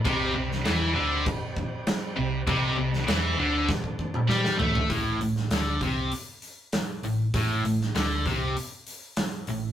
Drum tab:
CC |x---x---x---x---|x---x-----------|----------------|----------------|
HH |----------------|----------------|o-o-o-o-o-o-o-o-|o-o-o-o-o-o-o-o-|
SD |---oo-------o---|---oo---o---oo--|---oo-------o---|---oo-------o---|
T2 |----------------|-----------o----|----------------|----------------|
FT |----------------|--------------oo|----------------|----------------|
BD |o-------o-o-----|o-------ooo-----|o-----o---------|o-----o---------|